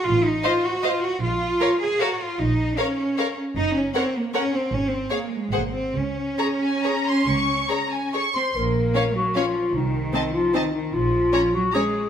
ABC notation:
X:1
M:3/4
L:1/8
Q:1/4=150
K:Db
V:1 name="Violin section"
z2 f2 f2 | z2 f2 f2 | z2 f2 f2 | z2 g2 g2 |
z2 f2 g2 | z2 b a b c' | d'2 b a d' c' | [K:Bbm] z2 f2 f2 |
z2 =a2 a2 | z2 b2 b2 |]
V:2 name="Violin section"
z2 e2 e2 | z2 d2 d2 | z2 d2 d2 | z2 d2 d2 |
z2 d2 c2 | z2 d2 d2 | z2 d2 d2 | [K:Bbm] z2 d2 d2 |
z2 e2 e2 | z2 d2 d2 |]
V:3 name="Viola section"
z2 c2 c2 | z2 B2 B2 | z2 B2 B2 | z2 B2 B2 |
z2 A2 A2 | z2 A2 A2 | z2 A2 A2 | [K:Bbm] z2 D2 D2 |
z2 C2 C2 | z2 D2 D2 |]
V:4 name="Clarinet"
z6 | z6 | z6 | z6 |
z6 | z6 | z4 z c | [K:Bbm] B3 G F2 |
E3 F E E | F3 G A2 |]
V:5 name="Cello section"
F E F G F G | F3 A G F | E2 D3 z | E D C B, D C |
D C B, A, B, C | D6- | D4 z C | [K:Bbm] B,3 G, F,2 |
E,3 F, E, E, | F,3 G, A,2 |]
V:6 name="Double bass section" clef=bass
=A,,,2 z4 | B,,,2 z4 | B,,,2 z4 | G,,,2 z4 |
A,,,2 z2 A,,,2 | D,,2 z4 | D,,2 z4 | [K:Bbm] B,,,2 z4 |
C,,2 z4 | B,,,2 z4 |]